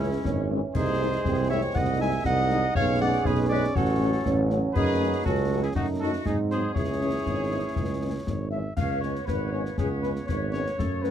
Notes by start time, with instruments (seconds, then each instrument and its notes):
Already playing: tuba C#2, trombone section E3 G#3, woodwind section C#4, cornet E4, euphonium G#4
0.24 tuba G#1, euphonium C#4, concert bass drum, snare
0.50 french horn section E3 G#3 C#4
0.75 tuba C2, trombone section G#3, euphonium D#4, woodwind section G#4, cornet C5, concert bass drum, snare, crash
0.99 french horn section D#3 G#3 D#4
1.25 tuba C2, euphonium C4, concert bass drum, snare
1.49 french horn section D#3 G#3 D#4, woodwind section C#5, cornet E5
1.74 tuba C2, trombone section D#3, woodwind section D#5, cornet F#5, concert bass drum, snare
1.99 french horn section D#3 G#3 D#4, woodwind section E5, cornet G#5
2.25 tuba C2, euphonium D#4, woodwind section D#5, cornet F#5, concert bass drum, snare
2.50 french horn section D#3 G#3 D#4, snare
2.75 tuba B1, trombone section G#3 C#4, euphonium G#4, woodwind section C#5, cornet F5, concert bass drum, snare
3.01 french horn section G#3 C#4, woodwind section D5, cornet F#5
3.24 tuba B1, woodwind section G#4, cornet B4, concert bass drum, snare
3.49 french horn section G#3 C#4, woodwind section B4, cornet D5
3.75 tuba A1, trombone section F#3, euphonium F#4, woodwind section A4, cornet C#5, concert bass drum, snare
4.00 french horn section F#3 A3 C#4
4.25 tuba A1, euphonium C#4, concert bass drum, snare
4.50 french horn section F#3 A3 C#4, snare
4.74 tuba F#2, trombone section C#4, euphonium D#4, woodwind section G#4, cornet B4, concert bass drum, snare, crash
5.00 french horn section F#3 A3 C#4
5.25 tuba C#2, euphonium C#4, woodwind section F#4, cornet A4, concert bass drum, snare
5.51 french horn section F#3 A3 C#4
5.63 woodwind section E4, cornet G#4
5.75 tuba F#2, trombone section A3 D#4, woodwind section D#4, euphonium D#4, cornet F#4, concert bass drum, snare
6.00 french horn section F#3 A3 D#4, woodwind section F#4, cornet A4
6.26 tuba G#2, trombone section F#3 C4, euphonium D#4, woodwind section D#4, cornet G#4, concert bass drum, snare
6.51 french horn section F#3 G#3 C4, woodwind section G#4, cornet C5, snare
6.74 tuba C#2, trombone section E3 C#4, euphonium E4, woodwind section G#4, cornet C#5, concert bass drum, snare
7.01 french horn section E3 G#3 C#4
7.26 tuba G#1, concert bass drum, snare
7.50 french horn section E3 G#3 C#4
7.76 tuba C#2, concert bass drum, snare
8.01 french horn section E3 G#3 C#4
8.26 tuba G#1, concert bass drum, snare
8.51 french horn section E3 G#3 C#4, flute section E5, cornet E5
8.76 tuba C#2, trombone section B3, woodwind section B4 C#5, cornet F5, flute section F5, concert bass drum, snare, crash
9.00 french horn section G#3 B3 C#4, cornet C#5, flute section C#5, snare
9.15 snare
9.26 tuba G#1, cornet B4, woodwind section B4 C#5, flute section B4, concert bass drum, snare
9.52 french horn section G#3 B3 C#4, cornet C#5, flute section C#5
9.66 snare
9.77 tuba C#2, cornet G#4, flute section G#4, woodwind section B4 C#5, concert bass drum, snare
10.01 french horn section G#3 B3 C#4, cornet B4, flute section B4, snare
10.16 snare
10.26 tuba G#1, woodwind section B4 C#5, cornet C#5, flute section C#5, concert bass drum, snare
10.52 french horn section G#3 B3 C#4, cornet C#5, flute section C#5, snare
10.66 snare
10.76 tuba F#2, trombone section C#3 A3, woodwind section A4 C#5, concert bass drum, snare
11.02 french horn section F#3 A3 C#4, cornet B4, flute section B4, snare